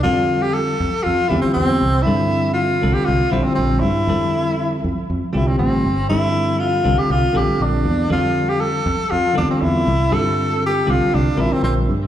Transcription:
<<
  \new Staff \with { instrumentName = "Tenor saxophone" } { \time 4/4 \key c \mixolydian \tempo 4 = 119 f'8. g'16 a'4 f'8 e'16 c'16 c'4 | e'4 f'8. g'16 f'8 e'16 c'16 c'8 e'8~ | e'2 r8 e'16 c'16 c'4 | e'4 f'8. g'16 f'8 g'8 d'4 |
f'8. g'16 a'4 f'8 d'16 c'16 e'4 | a'4 g'8 f'8 d'8 e'16 c'16 c'8 r8 | }
  \new Staff \with { instrumentName = "Tine electric piano" } { \time 4/4 \key c \mixolydian <d g c' f' a'>4. r4 <d g c' f' g'>4 r8 | <d f g c' a'>4. <d g c' f' a'>4 <d g c' f' c''>4 r8 | <d f g c' a'>4. r4 <d g c' f' g'>4 r8 | <d f g c' a'>4. <d g c' f' a'>4 <d g c' f' a'>4 r8 |
<d g c' f' a'>4. r4 <d g c' f' a'>4 r8 | <d g c' f' a'>4. <d g c' f' a'>4 <d g c' f' bes'>4 r8 | }
  \new Staff \with { instrumentName = "Fingered electric bass" } { \clef bass \time 4/4 \key c \mixolydian f,4. f,16 r16 f,16 r16 e,16 r16 e,8 c,8 | g,4. c,16 r16 c,16 r16 bes,,16 r16 bes,,8 g,8 | f,4. f,16 r16 f,16 r16 c,8 a,,8 g,,8 | g,4. c,16 r16 c,16 r16 bes,,16 r16 bes,,8 e,8 |
f,4. f,16 r16 f,16 r16 e,16 r16 e,8 c,8 | g,4. c,16 r16 c,16 r16 bes,,16 r16 bes,,8 g,8 | }
>>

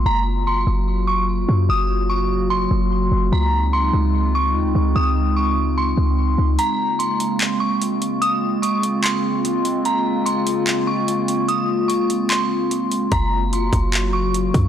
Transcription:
<<
  \new Staff \with { instrumentName = "Synth bell" } { \time 4/4 \key bes \minor \tempo 4 = 147 bes''4 c'''4. des'''4. | ees'''4 des'''4 c'''2 | bes''4 c'''4. des'''4. | ees'''4 des'''4 c'''2 |
bes''4 c'''4. des'''4. | ees'''4 des'''4 c'''2 | bes''4 c'''4. des'''4. | ees'''4 des'''4 c'''2 |
bes''4 c'''4. des'''4. | }
  \new Staff \with { instrumentName = "Ambient pad" } { \time 4/4 \key bes \minor << { <ges f' ges'>1~ | <ges f' ges'>1 | <aes ees' f'>1~ | <aes ees' f'>1 |
<aes c' f'>1~ | <aes c' f'>1~ | <aes c' f'>1~ | <aes c' f'>1 |
<ges ges'>1 | } \\ { <des bes>1~ | <des bes>1 | <des c'>1~ | <des c'>1 |
<des bes>1~ | <des bes>1~ | <des bes>1~ | <des bes>1~ |
<des bes>1 | } >> }
  \new Staff \with { instrumentName = "808-style bass" } { \clef bass \time 4/4 \key bes \minor ges,,4. ges,,2 ges,8 | ges,,2~ ges,,8 ges,,4 ges,,8 | des,4. des,4. ees,16 des,16 des,8 | des,2~ des,8 des,4 des,8 |
r1 | r1 | r1 | r1 |
ges,,4. ges,,2 ges,8 | }
  \new DrumStaff \with { instrumentName = "Drums" } \drummode { \time 4/4 r4 r4 r4 r4 | r4 r4 r4 r4 | r4 r4 r4 r4 | r4 r4 r4 r4 |
hh4 hh8 hh8 <hc hh>4 hh8 hh8 | hh4 hh8 hh8 <hc hh>4 hh8 hh8 | hh4 hh8 hh8 <hc hh>4 hh8 hh8 | hh4 hh8 hh8 <hc hh>4 hh8 hh8 |
<hh bd>4 hh8 <hh bd>8 <hc hh>4 hh8 <hh bd>8 | }
>>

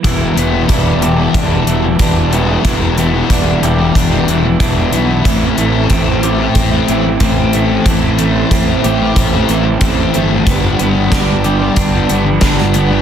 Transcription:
<<
  \new Staff \with { instrumentName = "Clean electric guitar" } { \time 4/4 \key e \minor \tempo 4 = 92 e8 b8 d'8 g'8 d'8 e8 d'8 b8 | e8 b8 d'8 g'8 d'8 e8 d'8 b8 | e8 a8 c'8 g'8 c'8 e8 c'8 a8 | e8 a8 c'8 g'8 c'8 e8 c'8 a8 |
b8 b8 d'8 g'8 d'8 b8 d'8 b8 | }
  \new Staff \with { instrumentName = "Overdriven electric guitar" } { \time 4/4 \key e \minor <e g b e'>16 <g b e'>16 <e g b e'>8 <e g b e'>8 <e g b e'>16 <g b e'>8 <g b e'>16 <e g b e'>16 <g b e'>16 <e g b e'>8 <e g b e'>16 <g b e'>16 | <e g b e'>16 <g b e'>16 <e g b e'>8 <e g b e'>8 <e g b e'>16 <g b e'>8 <g b e'>16 <e g b e'>16 <g b e'>16 <e g b e'>8 <e g b e'>16 <g b e'>16 | <a, e a c' e'>16 <a c' e'>16 <e a c' e'>8 <a, e a c' e'>8 <e a c' e'>16 <a c' e'>8 <a c' e'>16 <e a c' e'>16 <a c' e'>16 <a, e a c' e'>8 <e a c' e'>16 <a c' e'>16 | <a, e a c' e'>16 <a c' e'>16 <e a c' e'>8 <a, e a c' e'>8 <e a c' e'>16 <a c' e'>8 <a c' e'>16 <e a c' e'>16 <a c' e'>16 <a, e a c' e'>8 <e a c' e'>16 <a c' e'>16 |
<g, d g b d'>16 <g b d'>16 <d g b d'>8 <g, d g b d'>8 <d g b d'>16 <g b d'>8 <g b d'>16 <d g b d'>16 <g b d'>16 <g, d g b d'>8 <d g b d'>16 <g b d'>16 | }
  \new Staff \with { instrumentName = "Distorted electric guitar" } { \clef bass \time 4/4 \key e \minor <e, b, e>8 <e, b, e>16 <b, e>16 <e, b, e>8 <e, b, e>8. <b, e>8. <e, b, e>8 <e, b, e>16 <b, e>16 | <e, b, e>8 <e, b, e>16 <b, e>16 <e, b, e>8 <e, b, e>8. <b, e>8. <e, b, e>8 <e, b, e>16 <b, e>16 | <a, e a>8 <a, e a>16 <e a>16 <a, e a>8 <a, e a>8. <e a>8. <a, e a>8 <a, e a>16 <e a>16 | <a, e a>8 <a, e a>16 <e a>16 <a, e a>8 <a, e a>8. <e a>8. <a, e a>8 <a, e a>16 <e a>16 |
<g, d g>8 <g, d g>16 <d g>16 <g, d g>8 <g, d g>8. <d g>8. <g, d g>8 <g, d g>16 <d g>16 | }
  \new Staff \with { instrumentName = "Fingered electric bass" } { \clef bass \time 4/4 \key e \minor e,,8 e,,8 e,,4 e,,8 e,,8 e,,4 | e,,4 e,,8 e,,8 e,,8 e,,8 e,,8 b,,8 | a,,8 a,,8 a,,4 a,,8 a,,8 a,,4 | a,,4 a,,8 a,,8 a,,8 a,,8 a,,8 g,,8 |
g,,8 g,,8 g,,4 g,,8 g,,8 g,,4 | }
  \new DrumStaff \with { instrumentName = "Drums" } \drummode { \time 4/4 <hh bd>8 hh8 <hh bd>8 hh8 <hh bd>8 hh8 <hh bd>8 hh8 | <hh bd>8 hh8 <hh bd>8 hh8 <hh bd>8 hh8 <hh bd>8 hh8 | <hh bd>8 hh8 <hh bd>8 hh8 <hh bd>8 hh8 <hh bd>8 hh8 | <hh bd>8 hh8 <hh bd>8 hh8 <hh bd>8 hh8 <hh bd>8 hh8 |
<hh bd>8 hh8 <hh bd sn>8 hh8 <hh bd>8 hh8 <hh bd sn>16 sn16 hh8 | }
>>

